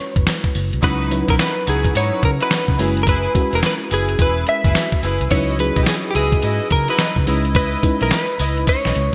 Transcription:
Already playing: fm electric piano G#3 C#4 E4 F#4 B4, clean electric guitar C#5
0.16 fingered electric bass F#1, clean electric guitar B4, kick, closed hi-hat
0.27 snare, closed hi-hat, tambourine
0.44 kick
0.55 fingered electric bass F#1, open hi-hat, tambourine
0.73 fingered electric bass C2, closed hi-hat
0.82 fingered electric bass C#2, fm electric piano F#3 C#4 D#4 E4 B4, string section D#4 E4 F#4 B4, clean electric guitar B4, kick, closed hi-hat, tambourine
1.11 fm electric piano F#3 C#4 D#4 E4 B4, closed hi-hat, tambourine
1.28 fingered electric bass B1, string section D#4 E4 F#4 B4, clean electric guitar A#4, kick, closed hi-hat
1.39 clean electric guitar B4, snare, closed hi-hat, tambourine
1.66 fingered electric bass C#2, string section D#4 E4 F#4 B4, clean electric guitar G#4, closed hi-hat, tambourine
1.85 kick, closed hi-hat
1.94 fingered electric bass G#2, string section D#4 E4 F#4 B4, clean electric guitar C#5, closed hi-hat, tambourine
2.23 fingered electric bass C#3, clean electric guitar A#4, kick, closed hi-hat
2.40 string section D#4 E4 F#4 B4, clean electric guitar B4, closed hi-hat
2.51 snare, closed hi-hat, tambourine
2.68 fingered electric bass C#3, kick
2.78 fingered electric bass F#1, fm electric piano G#3 C#4 E4 F#4 B4, string section E4 G#4 B4, open hi-hat, tambourine
2.97 closed hi-hat
3.03 string section E4 G#4 B4, clean electric guitar A#4, kick
3.07 clean electric guitar B4, closed hi-hat, tambourine
3.34 fm electric piano G#3 C#4 E4 F#4 A#4, kick, closed hi-hat, tambourine
3.42 fm electric piano B4
3.52 fingered electric bass E1, string section E4 G#4 B4, clean electric guitar A#4, closed hi-hat
3.63 clean electric guitar B4, snare, closed hi-hat, tambourine
3.90 fingered electric bass F#1, string section E4 G#4 B4, clean electric guitar G#4, closed hi-hat, tambourine
4.09 closed hi-hat
4.18 fingered electric bass E1, string section E4 G#4 B4, clean electric guitar B4, kick, closed hi-hat, tambourine
4.47 clean electric guitar E5, closed hi-hat
4.64 fingered electric bass F#1, string section E4 G#4 B4, kick, closed hi-hat
4.75 snare, closed hi-hat, tambourine
4.92 kick
5.02 fingered electric bass F#1, string section E4 G#4 B4, open hi-hat, tambourine
5.20 fingered electric bass C2, closed hi-hat
5.30 fingered electric bass C#2, fm electric piano F#3 C#4 D#4 E4 B4, string section E4 F#4 B4 D#5, clean electric guitar C#5, kick, closed hi-hat, tambourine
5.59 fm electric piano F#3 C#4 D#4 E4 G#4, clean electric guitar B4, closed hi-hat, tambourine
5.76 fingered electric bass B1, string section E4 F#4 B4 D#5, kick, closed hi-hat
5.83 clean electric guitar G4, snare, closed hi-hat, tambourine
5.88 clean electric guitar G#4
6.11 string section E4 F#4, clean electric guitar G4
6.15 fingered electric bass C#2, clean electric guitar G#4, string section B4 D#5, closed hi-hat, tambourine
6.32 kick, closed hi-hat
6.42 fingered electric bass G#2, string section E4 F#4 B4 D#5, closed hi-hat, tambourine
6.70 fingered electric bass C#3, clean electric guitar A#4, kick, closed hi-hat
6.88 string section E4 F#4 B4 D#5, clean electric guitar B4, closed hi-hat
6.99 snare, closed hi-hat, tambourine
7.16 fingered electric bass C#3, kick
7.26 fingered electric bass C#2, fm electric piano G#3 C#4 D#4 E4 B4, string section E4 B4 D#5, open hi-hat, tambourine
7.45 closed hi-hat
7.54 string section E4 B4 D#5, clean electric guitar B4, kick, closed hi-hat, tambourine
7.83 fm electric piano G#3 C#4 D#4 E4 B4, kick, closed hi-hat, tambourine
8.00 fingered electric bass B1, string section E4 B4 D#5, clean electric guitar A#4, closed hi-hat
8.11 clean electric guitar B4, snare, closed hi-hat, tambourine
8.39 fingered electric bass C#2, string section E4 B4 D#5, open hi-hat, tambourine
8.57 closed hi-hat
8.66 string section E4 B4 D#5, clean electric guitar C#5, kick, closed hi-hat, tambourine
8.85 fingered electric bass B1, snare
8.95 fingered electric bass C#2, closed hi-hat

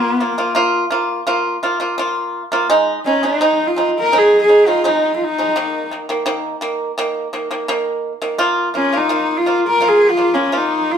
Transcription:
Already playing: pipa A#3 F4, horsehead fiddle A#3
0.20 pipa A#3 F4
0.38 pipa A#3 F4
0.55 pipa A#3 F4
0.91 pipa A#3 F4
1.27 pipa A#3 F4
1.63 pipa A#3 F4
1.80 pipa A#3 F4
1.98 pipa A#3 F4
2.52 pipa A#3 F4
2.70 pipa G#3 D#4
3.06 pipa G#3 D#4, horsehead fiddle C#4
3.23 pipa G#3 D#4, horsehead fiddle D#4
3.41 pipa G#3 D#4
3.67 horsehead fiddle F4
3.76 pipa G#3 D#4
3.99 horsehead fiddle A#4
4.12 pipa G#3 D#4
4.18 horsehead fiddle G#4
4.42 horsehead fiddle G#4
4.48 pipa G#3 D#4
4.67 pipa G#3 D#4, horsehead fiddle F4
4.84 pipa G#3 D#4, horsehead fiddle D#4
5.16 horsehead fiddle F4
5.24 horsehead fiddle D#4
5.38 pipa G#3 D#4
5.56 pipa D#3 A#3
5.91 pipa D#3 A#3
6.09 pipa D#3 A#3
6.26 pipa D#3 A#3
6.61 pipa D#3 A#3
6.98 pipa D#3 A#3
7.33 pipa D#3 A#3
7.51 pipa D#3 A#3
7.68 pipa D#3 A#3
8.22 pipa D#3 A#3
8.38 pipa A#3 F4
8.74 pipa A#3 F4, horsehead fiddle C#4
8.93 pipa A#3 F4
8.97 horsehead fiddle D#4
9.09 pipa A#3 F4
9.37 horsehead fiddle F4
9.46 pipa A#3 F4
9.67 horsehead fiddle A#4
9.81 pipa A#3 F4
9.88 horsehead fiddle G#4
10.10 horsehead fiddle F4
10.17 pipa A#3 F4
10.34 pipa A#3 F4, horsehead fiddle C#4
10.52 pipa A#3 F4
10.57 horsehead fiddle D#4
10.91 horsehead fiddle F4

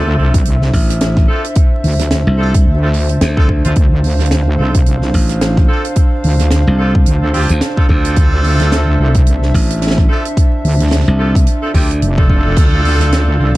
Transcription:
Already playing: wobble bass D2, horn section C4 D4 F4 A4, analog synth pad D4 C5 E5
0.18 wobble bass C2, horn section C4 D4 F4 A4
0.34 kick, closed hi-hat
0.45 closed hi-hat
0.62 snare
0.73 slap bass A1, kick, open hi-hat
0.89 snare, closed hi-hat
1.01 snare, closed hi-hat
1.17 kick, snare
1.28 horn section C4 D4 F4 A4
1.44 closed hi-hat
1.55 kick, closed hi-hat
1.84 wobble bass D2, open hi-hat
1.99 snare, closed hi-hat
2.11 snare, closed hi-hat
2.27 slap bass C2
2.39 horn section C4 D4 F4 A4
2.54 kick, closed hi-hat
2.66 wobble bass D2
2.82 horn section C4 D4 F4 A4
2.94 open hi-hat
3.09 closed hi-hat
3.21 slap bass D2, snare, closed hi-hat
3.37 horn section C4 D4 F4 A4, kick
3.49 kick
3.64 wobble bass D2, horn section C4 D4 F4 C5, closed hi-hat
3.75 wobble bass D2, analog synth pad F5, kick, closed hi-hat
4.04 open hi-hat
4.19 snare
4.26 closed hi-hat
4.31 snare, closed hi-hat
4.59 wobble bass C2, horn section C4 D4 F4 A4
4.74 kick, closed hi-hat
4.86 closed hi-hat
5.02 snare
5.14 slap bass A1, kick, open hi-hat
5.29 snare, closed hi-hat
5.41 snare, closed hi-hat
5.57 kick, snare
5.69 horn section C4 D4 F4 A4
5.85 closed hi-hat
5.96 kick, closed hi-hat
6.24 wobble bass D2, open hi-hat
6.39 snare, closed hi-hat
6.51 snare, closed hi-hat
6.67 slap bass C2
6.79 horn section C4 D4 F4 A4
6.95 kick
7.06 wobble bass D2, closed hi-hat
7.22 horn section C4 D4 F4 A4
7.34 horn section C4 D4 F4 G4, open hi-hat
7.49 slap bass D2, closed hi-hat
7.61 snare, closed hi-hat
7.77 horn section C4 D4 F4 A4, kick
7.89 slap bass D2, horn section C4 D4 F4 A4, kick
8.05 closed hi-hat
8.16 wobble bass D2, analog synth pad E5, kick, closed hi-hat
8.44 open hi-hat
8.60 snare, closed hi-hat
8.72 snare, closed hi-hat
8.99 wobble bass C2, horn section C4 D4 F4 A4
9.14 kick, closed hi-hat
9.27 closed hi-hat
9.43 snare
9.54 slap bass A1, kick, open hi-hat
9.70 snare, closed hi-hat
9.76 snare
9.82 snare, closed hi-hat
9.87 snare
9.90 snare
9.98 kick, snare
10.09 horn section C4 D4 F4 A4
10.25 closed hi-hat
10.37 kick, closed hi-hat
10.64 wobble bass D2, open hi-hat
10.80 snare, closed hi-hat
10.83 snare
10.86 snare
10.89 snare
10.91 snare, closed hi-hat
10.96 snare
11.00 snare
11.04 slap bass C2, snare
11.19 horn section C4 D4 F4 A4
11.35 kick, closed hi-hat
11.46 analog synth pad D5, closed hi-hat
11.63 horn section C4 D4 F4 A4
11.74 slap bass D2, horn section C4 D4 F4 G4, kick, open hi-hat
11.91 closed hi-hat
12.02 wobble bass F1, closed hi-hat
12.18 horn section C4 D4 F4 A4, kick
12.29 horn section C4 D4 F4 A4, kick
12.45 wobble bass F1
12.56 wobble bass D2, analog synth pad F5, kick, closed hi-hat, crash
12.85 open hi-hat
13.00 snare, closed hi-hat
13.12 snare, closed hi-hat
13.39 wobble bass C2, horn section C4 D4 F4 A4

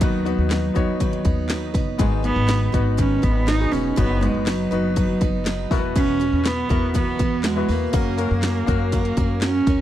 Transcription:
Already playing: cello F#3
0.01 upright bass D#2, steel-string acoustic guitar D#3 F#3 B3 D#4 B4, grand piano D#3 B3 D#4 F#4 B4, kick, closed hi-hat
0.25 grand piano B3 D#4 F#4 B4, steel-string acoustic guitar B3 D#4 B4, closed hi-hat
0.38 upright bass D#2
0.50 steel-string acoustic guitar F#3 B3 D#4 B4, snare, clap, closed hi-hat
0.74 upright bass D#2, grand piano B3 D#4 F#4 C#5, steel-string acoustic guitar D#4 B4, kick, closed hi-hat
0.78 steel-string acoustic guitar B3
1.00 steel-string acoustic guitar D#3 F#3 B3 D#4 B4, kick, closed hi-hat
1.13 closed hi-hat
1.25 upright bass D#2, steel-string acoustic guitar B3 D#4 B4, kick, closed hi-hat
1.49 steel-string acoustic guitar F#3 B3 D#4 B4, snare, clap, closed hi-hat
1.74 upright bass F#1, steel-string acoustic guitar B3 D#4 B4, kick, snare, closed hi-hat
1.98 upright bass G#1, steel-string acoustic guitar G#2 D#3 F#3 B3 D#4 B4, grand piano G#2 D#3 B3 D#4 F#4 G#4, cello G#3, kick, closed hi-hat
2.23 steel-string acoustic guitar F#3 B3 D#4 B4, cello B3, closed hi-hat
2.36 upright bass G#1
2.48 steel-string acoustic guitar F#3 B3 D#4 B4, snare, clap, closed hi-hat
2.72 upright bass G#1, steel-string acoustic guitar F#3 B3 D#4 B4, grand piano B3 D#4 F#4 B4, kick, closed hi-hat
2.97 steel-string acoustic guitar G#2 D#3 F#3 B3 D#4 B4, cello C#4, kick, closed hi-hat
3.22 upright bass G#1, steel-string acoustic guitar F#3 B3 D#4 B4, cello B3, kick, closed hi-hat
3.47 steel-string acoustic guitar F#3 B3 D#4 B4, cello D#4, snare, clap, closed hi-hat
3.59 grand piano B3 D#4 F#4 G#4
3.72 upright bass E1, steel-string acoustic guitar F#3 B3 D#4 B4, cello C#4, open hi-hat
3.96 upright bass F#1, steel-string acoustic guitar F#3 B3 D#4 B4, grand piano F#3 B3 D#4 F#4 B4, cello B3, kick, closed hi-hat
4.21 cello G#3, grand piano B3 D#4 F#4 B4, steel-string acoustic guitar B3 D#4 B4, closed hi-hat
4.34 upright bass F#1
4.40 cello G#3
4.46 cello F#3, steel-string acoustic guitar F#3 B3 D#4 B4, snare, clap, closed hi-hat
4.71 upright bass F#1, grand piano B3 D#4 F#4 B4, steel-string acoustic guitar B3 D#4 B4, closed hi-hat
4.96 steel-string acoustic guitar F#3 B3 D#4 B4, kick, closed hi-hat
5.21 upright bass F#1, steel-string acoustic guitar B3 D#4 B4, kick, closed hi-hat
5.45 steel-string acoustic guitar F#3 B3 D#4 B4, snare, clap, closed hi-hat
5.70 upright bass E1, grand piano B2 B3 E4 F#4 A#4, steel-string acoustic guitar B3 F#4 B4, kick, open hi-hat
5.78 grand piano B4
5.95 steel-string acoustic guitar E3 F#3 B3 F#4 B4, cello C#4, kick, closed hi-hat
6.20 steel-string acoustic guitar B3 F#4 B4, closed hi-hat
6.33 upright bass E2
6.44 steel-string acoustic guitar F#3 B3 F#4 B4, cello B3, snare, clap, closed hi-hat
6.68 upright bass E2, grand piano B3 E4 F#4 A#4, steel-string acoustic guitar B3 F#4 B4, kick, closed hi-hat
6.94 steel-string acoustic guitar E3 F#3 B3 F#4 B4, cello B3, kick, closed hi-hat
7.19 upright bass E2, steel-string acoustic guitar B3 F#4 B4, kick, closed hi-hat
7.43 steel-string acoustic guitar F#3 B3 F#4 B4, cello G#3, snare, clap, closed hi-hat
7.56 grand piano B3 E4 F#4 B4
7.68 upright bass E2, cello A#3, steel-string acoustic guitar B3 F#4 B4, open hi-hat
7.92 upright bass F#2, grand piano C#3 A#3 C#4 F#4 A#4, steel-string acoustic guitar F#3 C#4 F#4 A#4, kick, closed hi-hat
8.17 grand piano A#3 C#4 F#4 A#4, steel-string acoustic guitar C#4 F#4 A#4, closed hi-hat
8.31 upright bass F#2
8.42 steel-string acoustic guitar F#3 C#4 F#4 A#4, snare, clap, closed hi-hat
8.66 upright bass F#2, grand piano A#3 C#4 F#4 A#4, steel-string acoustic guitar F#4 A#4, kick, closed hi-hat
8.71 steel-string acoustic guitar C#4
8.92 steel-string acoustic guitar F#3 C#4 F#4 A#4, kick, closed hi-hat
9.05 closed hi-hat
9.17 upright bass F#2, steel-string acoustic guitar C#4 F#4 A#4, kick, closed hi-hat
9.41 steel-string acoustic guitar F#3 C#4 F#4 A#4, cello C#4, snare, clap, closed hi-hat
9.67 upright bass D#2, steel-string acoustic guitar C#4 F#4 A#4, kick, snare, closed hi-hat

